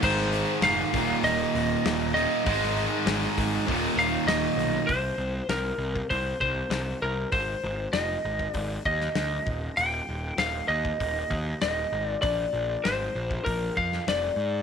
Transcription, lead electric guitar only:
0.04 C5
0.63 F5
1.24 D#5
2.14 D#5
3.99 F5
4.28 D#5
4.87 C5
5.50 A#4
6.10 C5
6.41 C5
7.02 A#4
7.32 C5
7.93 D#5
8.53 D5
8.86 D#5
9.77 G5
10.39 F5
10.68 D#5
11.62 D#5
12.07 D5
12.22 D5
12.84 C5
13.45 A#4
13.77 F5
14.09 D5

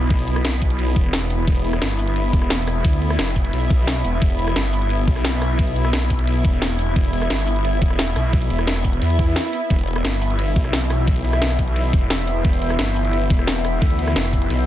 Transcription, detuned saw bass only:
Already playing: B1
0.96 E1
1.47 E1
1.82 G1
2.33 E1
2.85 D2
3.19 F1
3.53 B1
4.05 E1
4.22 E1
4.56 G1
5.08 B1
6.45 E1
6.96 E1
7.30 G1
7.82 E1
8.16 B1
8.50 E1
9.02 E2
9.70 E1
10.05 G1
10.56 B1
11.93 E1
12.45 E1
12.79 G1
13.30 E1
13.82 D2
14.16 F1
14.50 B1

